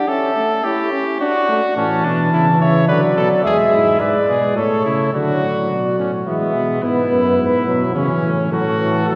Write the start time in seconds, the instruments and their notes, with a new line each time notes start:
0.08 trombone C#4, trumpet A4, cornet E5
0.36 trombone A3
0.64 trombone E4, trumpet G4, cornet C#5
0.92 trombone C#4
1.20 trombone D4, trumpet F#4, cornet D5
1.49 trombone A3
1.77 bass trombone A2, trombone E3, trumpet C#4, cornet A5
2.04 bass trombone B2, trumpet D4
2.33 bass trombone C#3, trumpet E4
2.60 bass trombone C#3, trumpet C#5, cornet E5
2.88 bass trombone D3, trombone F#3, trumpet B4, cornet D5
3.16 bass trombone B2, trumpet A4
3.44 bass trombone E2, trombone G#3, trumpet G#4, cornet E5
3.72 bass trombone G#2, trumpet E4
4.00 bass trombone G#2, trombone G#3, trumpet B4, cornet D5
4.29 bass trombone B2, trumpet G#4
4.56 bass trombone A2, trombone A3, trumpet A4, cornet C#5
4.85 bass trombone C#3, trumpet E4
5.13 bass trombone D3, trombone F#3, trumpet F#4, cornet D5
5.43 bass trombone A2
5.70 bass trombone B2, cornet D5
5.99 bass trombone A2, trumpet C#4
6.27 bass trombone E3, trombone G#3, trumpet B3, cornet E5
6.55 bass trombone B2
6.82 bass trombone G#2, trombone B3, trumpet E4, cornet B4
7.11 bass trombone F#2
7.39 bass trombone G#2
7.67 bass trombone B2, trombone F#3
7.95 bass trombone C#3, trombone E3, trumpet C#4, cornet C#5
8.23 bass trombone A2
8.51 bass trombone A2, trombone F#3, trumpet F#4, cornet A4
8.79 trombone E3
9.07 trombone F#3, trumpet A4